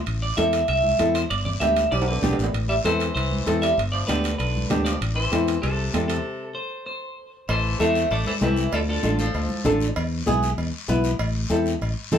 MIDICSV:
0, 0, Header, 1, 6, 480
1, 0, Start_track
1, 0, Key_signature, 0, "minor"
1, 0, Tempo, 309119
1, 101, Time_signature, 4, 2, 24, 8
1, 11627, Key_signature, 0, "minor"
1, 18915, End_track
2, 0, Start_track
2, 0, Title_t, "Clean electric guitar"
2, 0, Program_c, 0, 27
2, 349, Note_on_c, 0, 74, 92
2, 568, Note_off_c, 0, 74, 0
2, 575, Note_on_c, 0, 76, 106
2, 1054, Note_off_c, 0, 76, 0
2, 1072, Note_on_c, 0, 76, 99
2, 1777, Note_off_c, 0, 76, 0
2, 1783, Note_on_c, 0, 72, 86
2, 1860, Note_off_c, 0, 72, 0
2, 2023, Note_on_c, 0, 74, 89
2, 2101, Note_off_c, 0, 74, 0
2, 2256, Note_on_c, 0, 74, 83
2, 2333, Note_off_c, 0, 74, 0
2, 2488, Note_on_c, 0, 76, 94
2, 2941, Note_off_c, 0, 76, 0
2, 2971, Note_on_c, 0, 74, 86
2, 3049, Note_off_c, 0, 74, 0
2, 3226, Note_on_c, 0, 71, 77
2, 3704, Note_off_c, 0, 71, 0
2, 4179, Note_on_c, 0, 76, 92
2, 4257, Note_off_c, 0, 76, 0
2, 4427, Note_on_c, 0, 72, 91
2, 4866, Note_off_c, 0, 72, 0
2, 4884, Note_on_c, 0, 72, 91
2, 5563, Note_off_c, 0, 72, 0
2, 5622, Note_on_c, 0, 76, 90
2, 5846, Note_off_c, 0, 76, 0
2, 6087, Note_on_c, 0, 74, 89
2, 6164, Note_off_c, 0, 74, 0
2, 6321, Note_on_c, 0, 71, 91
2, 6789, Note_off_c, 0, 71, 0
2, 6808, Note_on_c, 0, 71, 84
2, 7486, Note_off_c, 0, 71, 0
2, 7525, Note_on_c, 0, 74, 83
2, 7758, Note_off_c, 0, 74, 0
2, 8009, Note_on_c, 0, 72, 90
2, 8687, Note_off_c, 0, 72, 0
2, 8725, Note_on_c, 0, 69, 81
2, 9405, Note_off_c, 0, 69, 0
2, 9442, Note_on_c, 0, 69, 82
2, 10123, Note_off_c, 0, 69, 0
2, 10166, Note_on_c, 0, 72, 83
2, 10622, Note_off_c, 0, 72, 0
2, 10658, Note_on_c, 0, 72, 75
2, 11332, Note_off_c, 0, 72, 0
2, 11635, Note_on_c, 0, 69, 74
2, 11644, Note_on_c, 0, 72, 87
2, 12079, Note_off_c, 0, 69, 0
2, 12079, Note_off_c, 0, 72, 0
2, 12112, Note_on_c, 0, 72, 78
2, 12118, Note_on_c, 0, 76, 102
2, 12556, Note_off_c, 0, 76, 0
2, 12557, Note_off_c, 0, 72, 0
2, 12596, Note_on_c, 0, 69, 76
2, 12607, Note_on_c, 0, 74, 83
2, 12816, Note_off_c, 0, 69, 0
2, 12819, Note_off_c, 0, 74, 0
2, 12845, Note_on_c, 0, 69, 74
2, 12857, Note_on_c, 0, 72, 91
2, 12922, Note_off_c, 0, 69, 0
2, 12934, Note_off_c, 0, 72, 0
2, 13089, Note_on_c, 0, 64, 71
2, 13099, Note_on_c, 0, 71, 88
2, 13525, Note_off_c, 0, 64, 0
2, 13530, Note_off_c, 0, 71, 0
2, 13563, Note_on_c, 0, 65, 75
2, 13575, Note_on_c, 0, 69, 89
2, 13640, Note_off_c, 0, 65, 0
2, 13653, Note_off_c, 0, 69, 0
2, 13802, Note_on_c, 0, 65, 68
2, 13809, Note_on_c, 0, 69, 90
2, 14241, Note_off_c, 0, 65, 0
2, 14264, Note_off_c, 0, 69, 0
2, 14281, Note_on_c, 0, 69, 64
2, 14289, Note_on_c, 0, 72, 69
2, 15172, Note_off_c, 0, 69, 0
2, 15173, Note_off_c, 0, 72, 0
2, 18915, End_track
3, 0, Start_track
3, 0, Title_t, "Nylon-string guitar"
3, 0, Program_c, 1, 24
3, 577, Note_on_c, 1, 60, 72
3, 586, Note_on_c, 1, 64, 64
3, 592, Note_on_c, 1, 69, 79
3, 915, Note_off_c, 1, 60, 0
3, 920, Note_off_c, 1, 64, 0
3, 920, Note_off_c, 1, 69, 0
3, 1537, Note_on_c, 1, 60, 68
3, 1544, Note_on_c, 1, 64, 66
3, 1553, Note_on_c, 1, 69, 78
3, 1875, Note_off_c, 1, 60, 0
3, 1879, Note_off_c, 1, 64, 0
3, 1883, Note_off_c, 1, 69, 0
3, 2495, Note_on_c, 1, 59, 71
3, 2501, Note_on_c, 1, 62, 64
3, 2510, Note_on_c, 1, 67, 77
3, 2834, Note_off_c, 1, 59, 0
3, 2838, Note_off_c, 1, 62, 0
3, 2842, Note_off_c, 1, 67, 0
3, 3456, Note_on_c, 1, 59, 64
3, 3464, Note_on_c, 1, 62, 61
3, 3471, Note_on_c, 1, 67, 79
3, 3795, Note_off_c, 1, 59, 0
3, 3799, Note_off_c, 1, 62, 0
3, 3801, Note_off_c, 1, 67, 0
3, 4420, Note_on_c, 1, 60, 67
3, 4426, Note_on_c, 1, 64, 61
3, 4429, Note_on_c, 1, 69, 75
3, 4758, Note_off_c, 1, 60, 0
3, 4760, Note_off_c, 1, 64, 0
3, 4762, Note_off_c, 1, 69, 0
3, 5377, Note_on_c, 1, 60, 68
3, 5382, Note_on_c, 1, 64, 64
3, 5391, Note_on_c, 1, 69, 76
3, 5717, Note_off_c, 1, 60, 0
3, 5718, Note_off_c, 1, 64, 0
3, 5723, Note_off_c, 1, 69, 0
3, 6330, Note_on_c, 1, 59, 72
3, 6339, Note_on_c, 1, 62, 61
3, 6347, Note_on_c, 1, 67, 78
3, 6673, Note_off_c, 1, 59, 0
3, 6678, Note_off_c, 1, 62, 0
3, 6682, Note_off_c, 1, 67, 0
3, 7292, Note_on_c, 1, 59, 74
3, 7302, Note_on_c, 1, 62, 66
3, 7305, Note_on_c, 1, 67, 77
3, 7635, Note_off_c, 1, 59, 0
3, 7638, Note_off_c, 1, 62, 0
3, 7641, Note_off_c, 1, 67, 0
3, 8259, Note_on_c, 1, 60, 71
3, 8269, Note_on_c, 1, 69, 73
3, 8271, Note_on_c, 1, 64, 67
3, 8599, Note_off_c, 1, 60, 0
3, 8602, Note_off_c, 1, 64, 0
3, 8603, Note_off_c, 1, 69, 0
3, 9215, Note_on_c, 1, 60, 72
3, 9222, Note_on_c, 1, 64, 64
3, 9229, Note_on_c, 1, 69, 81
3, 9557, Note_off_c, 1, 60, 0
3, 9559, Note_off_c, 1, 64, 0
3, 9563, Note_off_c, 1, 69, 0
3, 12099, Note_on_c, 1, 60, 71
3, 12106, Note_on_c, 1, 64, 65
3, 12114, Note_on_c, 1, 69, 80
3, 12439, Note_off_c, 1, 60, 0
3, 12443, Note_off_c, 1, 64, 0
3, 12446, Note_off_c, 1, 69, 0
3, 13064, Note_on_c, 1, 60, 70
3, 13070, Note_on_c, 1, 64, 68
3, 13076, Note_on_c, 1, 69, 76
3, 13401, Note_off_c, 1, 60, 0
3, 13405, Note_off_c, 1, 64, 0
3, 13405, Note_off_c, 1, 69, 0
3, 14020, Note_on_c, 1, 62, 69
3, 14031, Note_on_c, 1, 65, 67
3, 14035, Note_on_c, 1, 69, 77
3, 14360, Note_off_c, 1, 62, 0
3, 14363, Note_off_c, 1, 65, 0
3, 14367, Note_off_c, 1, 69, 0
3, 14979, Note_on_c, 1, 62, 90
3, 14986, Note_on_c, 1, 65, 85
3, 14994, Note_on_c, 1, 69, 96
3, 15318, Note_off_c, 1, 62, 0
3, 15322, Note_off_c, 1, 65, 0
3, 15326, Note_off_c, 1, 69, 0
3, 15935, Note_on_c, 1, 59, 88
3, 15941, Note_on_c, 1, 64, 78
3, 15948, Note_on_c, 1, 68, 93
3, 16276, Note_off_c, 1, 59, 0
3, 16279, Note_off_c, 1, 64, 0
3, 16282, Note_off_c, 1, 68, 0
3, 16899, Note_on_c, 1, 59, 89
3, 16908, Note_on_c, 1, 64, 80
3, 16911, Note_on_c, 1, 71, 97
3, 17238, Note_off_c, 1, 59, 0
3, 17243, Note_off_c, 1, 64, 0
3, 17243, Note_off_c, 1, 71, 0
3, 17852, Note_on_c, 1, 60, 85
3, 17861, Note_on_c, 1, 64, 76
3, 17869, Note_on_c, 1, 69, 90
3, 18194, Note_off_c, 1, 60, 0
3, 18198, Note_off_c, 1, 64, 0
3, 18202, Note_off_c, 1, 69, 0
3, 18817, Note_on_c, 1, 60, 85
3, 18825, Note_on_c, 1, 64, 78
3, 18834, Note_on_c, 1, 69, 98
3, 18915, Note_off_c, 1, 60, 0
3, 18915, Note_off_c, 1, 64, 0
3, 18915, Note_off_c, 1, 69, 0
3, 18915, End_track
4, 0, Start_track
4, 0, Title_t, "Tenor saxophone"
4, 0, Program_c, 2, 66
4, 2980, Note_on_c, 2, 55, 75
4, 3227, Note_on_c, 2, 50, 66
4, 3228, Note_off_c, 2, 55, 0
4, 3705, Note_off_c, 2, 50, 0
4, 4174, Note_on_c, 2, 55, 79
4, 4284, Note_off_c, 2, 55, 0
4, 4422, Note_on_c, 2, 52, 80
4, 4869, Note_off_c, 2, 52, 0
4, 4902, Note_on_c, 2, 52, 81
4, 5572, Note_off_c, 2, 52, 0
4, 5614, Note_on_c, 2, 55, 80
4, 5841, Note_off_c, 2, 55, 0
4, 6099, Note_on_c, 2, 53, 73
4, 6337, Note_on_c, 2, 50, 79
4, 6348, Note_off_c, 2, 53, 0
4, 6788, Note_off_c, 2, 50, 0
4, 6797, Note_on_c, 2, 50, 81
4, 7480, Note_off_c, 2, 50, 0
4, 7531, Note_on_c, 2, 53, 76
4, 7761, Note_off_c, 2, 53, 0
4, 7999, Note_on_c, 2, 52, 81
4, 8681, Note_off_c, 2, 52, 0
4, 8725, Note_on_c, 2, 48, 74
4, 9405, Note_off_c, 2, 48, 0
4, 9451, Note_on_c, 2, 48, 71
4, 10128, Note_off_c, 2, 48, 0
4, 11626, Note_on_c, 2, 52, 85
4, 12073, Note_off_c, 2, 52, 0
4, 12113, Note_on_c, 2, 57, 91
4, 12557, Note_off_c, 2, 57, 0
4, 12596, Note_on_c, 2, 57, 85
4, 12815, Note_off_c, 2, 57, 0
4, 12836, Note_on_c, 2, 52, 80
4, 12942, Note_off_c, 2, 52, 0
4, 13091, Note_on_c, 2, 52, 80
4, 13526, Note_off_c, 2, 52, 0
4, 13566, Note_on_c, 2, 50, 74
4, 13670, Note_off_c, 2, 50, 0
4, 13804, Note_on_c, 2, 50, 72
4, 14242, Note_off_c, 2, 50, 0
4, 14291, Note_on_c, 2, 53, 75
4, 15176, Note_off_c, 2, 53, 0
4, 18915, End_track
5, 0, Start_track
5, 0, Title_t, "Fingered electric bass"
5, 0, Program_c, 3, 33
5, 102, Note_on_c, 3, 33, 86
5, 486, Note_off_c, 3, 33, 0
5, 590, Note_on_c, 3, 40, 85
5, 970, Note_off_c, 3, 40, 0
5, 1062, Note_on_c, 3, 36, 87
5, 1446, Note_off_c, 3, 36, 0
5, 1549, Note_on_c, 3, 40, 90
5, 1930, Note_off_c, 3, 40, 0
5, 2027, Note_on_c, 3, 31, 93
5, 2409, Note_off_c, 3, 31, 0
5, 2509, Note_on_c, 3, 38, 84
5, 2890, Note_off_c, 3, 38, 0
5, 2984, Note_on_c, 3, 35, 89
5, 3367, Note_off_c, 3, 35, 0
5, 3465, Note_on_c, 3, 35, 78
5, 3680, Note_off_c, 3, 35, 0
5, 3704, Note_on_c, 3, 33, 81
5, 3919, Note_off_c, 3, 33, 0
5, 3937, Note_on_c, 3, 33, 87
5, 4323, Note_off_c, 3, 33, 0
5, 4420, Note_on_c, 3, 40, 87
5, 4805, Note_off_c, 3, 40, 0
5, 4899, Note_on_c, 3, 36, 90
5, 5285, Note_off_c, 3, 36, 0
5, 5386, Note_on_c, 3, 40, 93
5, 5769, Note_off_c, 3, 40, 0
5, 5864, Note_on_c, 3, 31, 92
5, 6248, Note_off_c, 3, 31, 0
5, 6354, Note_on_c, 3, 38, 85
5, 6734, Note_off_c, 3, 38, 0
5, 6823, Note_on_c, 3, 35, 89
5, 7208, Note_off_c, 3, 35, 0
5, 7308, Note_on_c, 3, 38, 89
5, 7691, Note_off_c, 3, 38, 0
5, 7782, Note_on_c, 3, 33, 92
5, 8167, Note_off_c, 3, 33, 0
5, 8256, Note_on_c, 3, 40, 93
5, 8644, Note_off_c, 3, 40, 0
5, 8748, Note_on_c, 3, 36, 94
5, 9131, Note_off_c, 3, 36, 0
5, 9221, Note_on_c, 3, 40, 91
5, 9607, Note_off_c, 3, 40, 0
5, 11629, Note_on_c, 3, 33, 92
5, 12012, Note_off_c, 3, 33, 0
5, 12108, Note_on_c, 3, 40, 90
5, 12491, Note_off_c, 3, 40, 0
5, 12590, Note_on_c, 3, 33, 88
5, 12780, Note_off_c, 3, 33, 0
5, 13066, Note_on_c, 3, 36, 94
5, 13450, Note_off_c, 3, 36, 0
5, 13548, Note_on_c, 3, 38, 91
5, 13931, Note_off_c, 3, 38, 0
5, 14030, Note_on_c, 3, 33, 91
5, 14412, Note_off_c, 3, 33, 0
5, 14511, Note_on_c, 3, 38, 92
5, 14701, Note_off_c, 3, 38, 0
5, 14995, Note_on_c, 3, 33, 93
5, 15375, Note_off_c, 3, 33, 0
5, 15478, Note_on_c, 3, 40, 98
5, 15857, Note_off_c, 3, 40, 0
5, 15955, Note_on_c, 3, 35, 97
5, 16335, Note_off_c, 3, 35, 0
5, 16426, Note_on_c, 3, 40, 94
5, 16618, Note_off_c, 3, 40, 0
5, 16905, Note_on_c, 3, 35, 100
5, 17288, Note_off_c, 3, 35, 0
5, 17379, Note_on_c, 3, 33, 98
5, 17765, Note_off_c, 3, 33, 0
5, 17857, Note_on_c, 3, 40, 97
5, 18243, Note_off_c, 3, 40, 0
5, 18345, Note_on_c, 3, 33, 92
5, 18536, Note_off_c, 3, 33, 0
5, 18826, Note_on_c, 3, 40, 90
5, 18915, Note_off_c, 3, 40, 0
5, 18915, End_track
6, 0, Start_track
6, 0, Title_t, "Drums"
6, 99, Note_on_c, 9, 74, 71
6, 107, Note_on_c, 9, 65, 67
6, 254, Note_off_c, 9, 74, 0
6, 262, Note_off_c, 9, 65, 0
6, 574, Note_on_c, 9, 63, 76
6, 579, Note_on_c, 9, 73, 76
6, 586, Note_on_c, 9, 65, 62
6, 730, Note_off_c, 9, 63, 0
6, 734, Note_off_c, 9, 73, 0
6, 741, Note_off_c, 9, 65, 0
6, 821, Note_on_c, 9, 73, 63
6, 824, Note_on_c, 9, 65, 70
6, 977, Note_off_c, 9, 73, 0
6, 979, Note_off_c, 9, 65, 0
6, 1059, Note_on_c, 9, 65, 62
6, 1064, Note_on_c, 9, 74, 68
6, 1214, Note_off_c, 9, 65, 0
6, 1220, Note_off_c, 9, 74, 0
6, 1299, Note_on_c, 9, 63, 67
6, 1455, Note_off_c, 9, 63, 0
6, 1537, Note_on_c, 9, 63, 78
6, 1542, Note_on_c, 9, 65, 67
6, 1546, Note_on_c, 9, 73, 64
6, 1692, Note_off_c, 9, 63, 0
6, 1697, Note_off_c, 9, 65, 0
6, 1701, Note_off_c, 9, 73, 0
6, 1786, Note_on_c, 9, 65, 72
6, 1786, Note_on_c, 9, 73, 65
6, 1941, Note_off_c, 9, 65, 0
6, 1941, Note_off_c, 9, 73, 0
6, 2026, Note_on_c, 9, 74, 71
6, 2030, Note_on_c, 9, 65, 70
6, 2182, Note_off_c, 9, 74, 0
6, 2185, Note_off_c, 9, 65, 0
6, 2261, Note_on_c, 9, 64, 70
6, 2417, Note_off_c, 9, 64, 0
6, 2490, Note_on_c, 9, 63, 78
6, 2504, Note_on_c, 9, 73, 72
6, 2507, Note_on_c, 9, 65, 63
6, 2645, Note_off_c, 9, 63, 0
6, 2659, Note_off_c, 9, 73, 0
6, 2663, Note_off_c, 9, 65, 0
6, 2741, Note_on_c, 9, 65, 69
6, 2750, Note_on_c, 9, 73, 63
6, 2896, Note_off_c, 9, 65, 0
6, 2905, Note_off_c, 9, 73, 0
6, 2981, Note_on_c, 9, 65, 64
6, 2992, Note_on_c, 9, 74, 66
6, 3136, Note_off_c, 9, 65, 0
6, 3136, Note_on_c, 9, 65, 90
6, 3148, Note_off_c, 9, 74, 0
6, 3291, Note_off_c, 9, 65, 0
6, 3293, Note_on_c, 9, 66, 68
6, 3448, Note_off_c, 9, 66, 0
6, 3455, Note_on_c, 9, 63, 80
6, 3455, Note_on_c, 9, 64, 81
6, 3462, Note_on_c, 9, 66, 73
6, 3479, Note_on_c, 9, 73, 66
6, 3610, Note_off_c, 9, 63, 0
6, 3610, Note_off_c, 9, 64, 0
6, 3617, Note_off_c, 9, 66, 0
6, 3618, Note_on_c, 9, 66, 94
6, 3635, Note_off_c, 9, 73, 0
6, 3715, Note_on_c, 9, 73, 68
6, 3773, Note_off_c, 9, 66, 0
6, 3787, Note_on_c, 9, 66, 88
6, 3871, Note_off_c, 9, 73, 0
6, 3943, Note_off_c, 9, 66, 0
6, 3951, Note_on_c, 9, 65, 68
6, 3962, Note_on_c, 9, 74, 67
6, 4107, Note_off_c, 9, 65, 0
6, 4118, Note_off_c, 9, 74, 0
6, 4417, Note_on_c, 9, 63, 77
6, 4425, Note_on_c, 9, 73, 72
6, 4434, Note_on_c, 9, 65, 65
6, 4572, Note_off_c, 9, 63, 0
6, 4581, Note_off_c, 9, 73, 0
6, 4590, Note_off_c, 9, 65, 0
6, 4659, Note_on_c, 9, 73, 66
6, 4679, Note_on_c, 9, 65, 68
6, 4814, Note_off_c, 9, 73, 0
6, 4834, Note_off_c, 9, 65, 0
6, 4901, Note_on_c, 9, 74, 69
6, 4924, Note_on_c, 9, 65, 62
6, 5056, Note_off_c, 9, 74, 0
6, 5079, Note_off_c, 9, 65, 0
6, 5143, Note_on_c, 9, 63, 71
6, 5299, Note_off_c, 9, 63, 0
6, 5384, Note_on_c, 9, 73, 66
6, 5385, Note_on_c, 9, 63, 79
6, 5399, Note_on_c, 9, 65, 67
6, 5540, Note_off_c, 9, 73, 0
6, 5541, Note_off_c, 9, 63, 0
6, 5554, Note_off_c, 9, 65, 0
6, 5624, Note_on_c, 9, 73, 67
6, 5642, Note_on_c, 9, 65, 73
6, 5779, Note_off_c, 9, 73, 0
6, 5798, Note_off_c, 9, 65, 0
6, 5864, Note_on_c, 9, 74, 66
6, 5890, Note_on_c, 9, 65, 69
6, 6020, Note_off_c, 9, 74, 0
6, 6045, Note_off_c, 9, 65, 0
6, 6342, Note_on_c, 9, 73, 72
6, 6344, Note_on_c, 9, 63, 78
6, 6357, Note_on_c, 9, 65, 68
6, 6498, Note_off_c, 9, 73, 0
6, 6499, Note_off_c, 9, 63, 0
6, 6512, Note_off_c, 9, 65, 0
6, 6586, Note_on_c, 9, 73, 69
6, 6602, Note_on_c, 9, 65, 65
6, 6741, Note_off_c, 9, 73, 0
6, 6757, Note_off_c, 9, 65, 0
6, 6822, Note_on_c, 9, 74, 68
6, 6834, Note_on_c, 9, 65, 61
6, 6978, Note_off_c, 9, 74, 0
6, 6989, Note_off_c, 9, 65, 0
6, 7066, Note_on_c, 9, 63, 73
6, 7222, Note_off_c, 9, 63, 0
6, 7302, Note_on_c, 9, 63, 80
6, 7302, Note_on_c, 9, 64, 85
6, 7303, Note_on_c, 9, 73, 70
6, 7310, Note_on_c, 9, 65, 65
6, 7310, Note_on_c, 9, 66, 71
6, 7457, Note_off_c, 9, 63, 0
6, 7457, Note_off_c, 9, 64, 0
6, 7458, Note_off_c, 9, 73, 0
6, 7465, Note_off_c, 9, 65, 0
6, 7465, Note_off_c, 9, 66, 0
6, 7543, Note_on_c, 9, 73, 68
6, 7552, Note_on_c, 9, 65, 72
6, 7698, Note_off_c, 9, 73, 0
6, 7708, Note_off_c, 9, 65, 0
6, 7793, Note_on_c, 9, 74, 69
6, 7795, Note_on_c, 9, 65, 72
6, 7948, Note_off_c, 9, 74, 0
6, 7950, Note_off_c, 9, 65, 0
6, 8256, Note_on_c, 9, 63, 79
6, 8268, Note_on_c, 9, 73, 69
6, 8273, Note_on_c, 9, 65, 64
6, 8411, Note_off_c, 9, 63, 0
6, 8423, Note_off_c, 9, 73, 0
6, 8429, Note_off_c, 9, 65, 0
6, 8506, Note_on_c, 9, 73, 66
6, 8514, Note_on_c, 9, 65, 66
6, 8661, Note_off_c, 9, 73, 0
6, 8670, Note_off_c, 9, 65, 0
6, 8746, Note_on_c, 9, 74, 68
6, 8750, Note_on_c, 9, 65, 64
6, 8902, Note_off_c, 9, 74, 0
6, 8905, Note_off_c, 9, 65, 0
6, 9222, Note_on_c, 9, 63, 81
6, 9225, Note_on_c, 9, 73, 65
6, 9227, Note_on_c, 9, 65, 66
6, 9227, Note_on_c, 9, 66, 69
6, 9377, Note_off_c, 9, 63, 0
6, 9380, Note_off_c, 9, 73, 0
6, 9382, Note_off_c, 9, 65, 0
6, 9382, Note_off_c, 9, 66, 0
6, 9464, Note_on_c, 9, 73, 67
6, 9467, Note_on_c, 9, 65, 74
6, 9619, Note_off_c, 9, 73, 0
6, 9622, Note_off_c, 9, 65, 0
6, 11624, Note_on_c, 9, 74, 70
6, 11629, Note_on_c, 9, 56, 100
6, 11780, Note_off_c, 9, 74, 0
6, 11784, Note_off_c, 9, 56, 0
6, 12108, Note_on_c, 9, 63, 81
6, 12112, Note_on_c, 9, 73, 79
6, 12263, Note_off_c, 9, 63, 0
6, 12268, Note_off_c, 9, 73, 0
6, 12351, Note_on_c, 9, 73, 63
6, 12506, Note_off_c, 9, 73, 0
6, 12588, Note_on_c, 9, 74, 74
6, 12598, Note_on_c, 9, 56, 75
6, 12743, Note_off_c, 9, 74, 0
6, 12753, Note_off_c, 9, 56, 0
6, 12825, Note_on_c, 9, 63, 74
6, 12980, Note_off_c, 9, 63, 0
6, 13058, Note_on_c, 9, 73, 67
6, 13061, Note_on_c, 9, 63, 84
6, 13213, Note_off_c, 9, 73, 0
6, 13217, Note_off_c, 9, 63, 0
6, 13300, Note_on_c, 9, 73, 70
6, 13456, Note_off_c, 9, 73, 0
6, 13538, Note_on_c, 9, 74, 73
6, 13550, Note_on_c, 9, 56, 108
6, 13693, Note_off_c, 9, 74, 0
6, 13705, Note_off_c, 9, 56, 0
6, 14021, Note_on_c, 9, 63, 83
6, 14022, Note_on_c, 9, 73, 77
6, 14176, Note_off_c, 9, 63, 0
6, 14177, Note_off_c, 9, 73, 0
6, 14267, Note_on_c, 9, 73, 69
6, 14422, Note_off_c, 9, 73, 0
6, 14508, Note_on_c, 9, 74, 73
6, 14515, Note_on_c, 9, 56, 79
6, 14663, Note_off_c, 9, 74, 0
6, 14671, Note_off_c, 9, 56, 0
6, 14737, Note_on_c, 9, 63, 77
6, 14892, Note_off_c, 9, 63, 0
6, 14981, Note_on_c, 9, 63, 81
6, 14981, Note_on_c, 9, 64, 86
6, 14990, Note_on_c, 9, 73, 73
6, 15136, Note_off_c, 9, 63, 0
6, 15136, Note_off_c, 9, 64, 0
6, 15145, Note_off_c, 9, 73, 0
6, 15225, Note_on_c, 9, 73, 76
6, 15380, Note_off_c, 9, 73, 0
6, 15469, Note_on_c, 9, 56, 104
6, 15470, Note_on_c, 9, 74, 75
6, 15624, Note_off_c, 9, 56, 0
6, 15625, Note_off_c, 9, 74, 0
6, 15943, Note_on_c, 9, 63, 86
6, 15950, Note_on_c, 9, 73, 73
6, 16098, Note_off_c, 9, 63, 0
6, 16105, Note_off_c, 9, 73, 0
6, 16194, Note_on_c, 9, 73, 69
6, 16350, Note_off_c, 9, 73, 0
6, 16429, Note_on_c, 9, 56, 75
6, 16430, Note_on_c, 9, 74, 70
6, 16584, Note_off_c, 9, 56, 0
6, 16585, Note_off_c, 9, 74, 0
6, 16904, Note_on_c, 9, 63, 85
6, 16907, Note_on_c, 9, 73, 66
6, 17059, Note_off_c, 9, 63, 0
6, 17062, Note_off_c, 9, 73, 0
6, 17142, Note_on_c, 9, 73, 73
6, 17298, Note_off_c, 9, 73, 0
6, 17381, Note_on_c, 9, 56, 107
6, 17382, Note_on_c, 9, 74, 72
6, 17537, Note_off_c, 9, 56, 0
6, 17537, Note_off_c, 9, 74, 0
6, 17853, Note_on_c, 9, 73, 80
6, 17860, Note_on_c, 9, 63, 86
6, 18009, Note_off_c, 9, 73, 0
6, 18015, Note_off_c, 9, 63, 0
6, 18103, Note_on_c, 9, 73, 67
6, 18259, Note_off_c, 9, 73, 0
6, 18347, Note_on_c, 9, 74, 69
6, 18355, Note_on_c, 9, 56, 77
6, 18502, Note_off_c, 9, 74, 0
6, 18510, Note_off_c, 9, 56, 0
6, 18818, Note_on_c, 9, 63, 84
6, 18818, Note_on_c, 9, 64, 84
6, 18819, Note_on_c, 9, 73, 72
6, 18830, Note_on_c, 9, 66, 68
6, 18915, Note_off_c, 9, 63, 0
6, 18915, Note_off_c, 9, 64, 0
6, 18915, Note_off_c, 9, 66, 0
6, 18915, Note_off_c, 9, 73, 0
6, 18915, End_track
0, 0, End_of_file